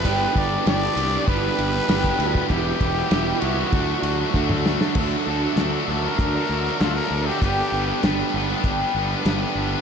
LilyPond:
<<
  \new Staff \with { instrumentName = "Trumpet" } { \time 4/4 \key g \major \tempo 4 = 98 b'8 d''8 d''4 b'2 | g'4. fis'2 r8 | \key d \mixolydian r4. bes'4. f'16 bes'8 g'16 | g'4 r2. | }
  \new Staff \with { instrumentName = "Distorted electric guitar" } { \time 4/4 \key g \major <g, d g b d' g'>4 <g, d g b d' g'>8 <g, d g b d' g'>8 <g, d g b d' g'>4 <g, d g b d' g'>8 <g, d g b d' g'>8 | <e, b, e g b g'>4 <e, b, e g b g'>8 <e, b, e g b g'>8 <d a d' fis'>4 <d a d' fis'>8 <d a d' fis'>8 | \key d \mixolydian <d d' fis' a'>8 <d d' fis' a'>16 <d' fis' a'>16 <d d' fis' a'>8 <d d' fis' a'>16 <d' fis' a'>8 <d' fis' a'>16 <d d' fis' a'>16 <d' fis' a'>16 <d d' fis' a'>16 <d' fis' a'>8 <d' fis' a'>16 | <g b d' b'>8 <g b d' b'>16 <b d' b'>16 <g b d' b'>8 <g b d' b'>16 <b d' b'>8 <b d' b'>16 <g b d' b'>16 <b d' b'>16 <g b d' b'>16 <b d' b'>8 <b d' b'>16 | }
  \new Staff \with { instrumentName = "Steel-string acoustic guitar" } { \time 4/4 \key g \major <g, d g b d' g'>4 <g, d g b d' g'>8 <g b d' g'>8 <g b d' g'>4 <g, d g b d' g'>8 <g b d' g'>8 | <e g b e' g'>4 <e g b e' g'>8 <b e'>8 <a d' a'>4 <d a d' fis' a'>8 <d' fis' a'>8 | \key d \mixolydian <d a d' fis' a'>4 <a d' fis' a'>8 <d' fis'>8 <d d' fis'>4 r4 | <g, d g b d' g'>4 <g b d' g'>8 <g b d' g'>8 <g, d g b d' g'>4 <g b d' g'>4 | }
  \new Staff \with { instrumentName = "Distorted electric guitar" } { \time 4/4 \key g \major <g b d' g'>4 <g b d' g'>8 <g b d' g'>8 <g b d' g'>4 <g b d' g'>8 <g b d' g'>8 | <e b e' g'>4 <e b e' g'>8 <e b e' g'>8 <d fis a d' fis'>4 <d fis a d' fis'>8 <d fis a d' fis'>8 | \key d \mixolydian <d fis a d'>8 <d fis a d'>16 <fis a d'>16 <d fis a d'>16 <fis a d'>16 <d fis a d'>16 <fis a d'>8 <fis a d'>16 <d fis a d'>16 <fis a d'>16 <d fis a d'>8 <d fis a d'>8 | <g, d g b d'>8 <d g b d'>16 <g b d'>16 <g, d g b d'>16 <g b d'>16 <d g b d'>16 <g b d'>8 <g b d'>16 <d g b d'>16 <g b d'>16 <g, d g b d'>8 <d g b d'>8 | }
  \new Staff \with { instrumentName = "Fingered electric bass" } { \clef bass \time 4/4 \key g \major g,,8 g,,8 g,,8 c,8 g,,8 g,,8 g,,8 d,8 | e,,8 e,,8 e,,8 c,8 d,8 d,8 d,4 | \key d \mixolydian d,8 d,8 d,8 d,8 d,8 d,8 d,8 d,8 | g,,8 g,,8 g,,8 g,,8 g,,8 g,,8 g,,8 g,,8 | }
  \new DrumStaff \with { instrumentName = "Drums" } \drummode { \time 4/4 <bd cymr>8 <bd cymr>8 <cymr sn>8 cymr8 <bd cymr>8 cymr8 <cymr sn>16 bd16 cymr16 bd16 | <bd cymr>8 <bd cymr>8 <cymr sn>8 cymr8 <bd cymr>8 cymr8 bd16 toml16 sn16 sn16 | <cymc bd>4 <hh sn>4 <hh bd>4 <hh sn>4 | <hh bd>4 <hh sn>4 <hh bd>4 <hh sn>4 | }
>>